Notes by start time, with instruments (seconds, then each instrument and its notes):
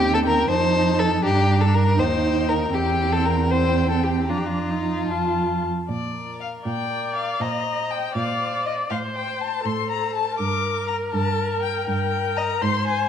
Already playing: cello D#2, viola C4, violin G4 G5
0.14 violin A4
0.26 violin A#4
0.50 cello F2, viola D#4, violin C5 A5
0.99 violin A4
1.24 cello G2, viola D4, violin G4 A#5
1.61 violin A4
1.75 violin A#4
1.98 cello D#2, viola D#4, violin C5 G5
2.49 violin A#4
2.73 cello E2, viola C4, violin G4 G5
3.12 violin A4
3.25 violin A#4
3.49 viola C4, violin C5 G5
3.90 violin A4
4.04 violin G4
4.29 cello F2, viola D4, violin F4 A#5
4.38 violin G4
4.46 violin F4
4.70 viola D#4
5.09 cello F2, viola F4, violin A5
5.89 cello A#2, violin D5
6.15 violin A#4
6.41 violin F5
6.65 cello A#2, viola D5, violin G5
6.91 violin A#4
7.16 violin F5
7.40 cello A#2, violin C5 A#5, viola D#5
7.66 violin C5
7.90 violin G5
8.15 cello A#2, viola D5, violin F5
8.41 violin C5
8.66 violin D#5
8.90 cello A2, viola C5, violin F5
9.15 violin C5 G5
9.41 violin A5
9.65 cello A2, viola A4, violin C6
9.90 violin C5 A#5
10.15 violin A5
10.38 cello G2, violin A#4 D6, viola A#4
10.63 violin A#4
10.88 violin A#5
11.12 cello G2, violin A5
11.37 violin A#4
11.62 violin G5
11.87 cello G2, violin G5
12.36 violin D#5 A#5
12.61 cello G#2, viola C5, violin C6
12.87 violin G#5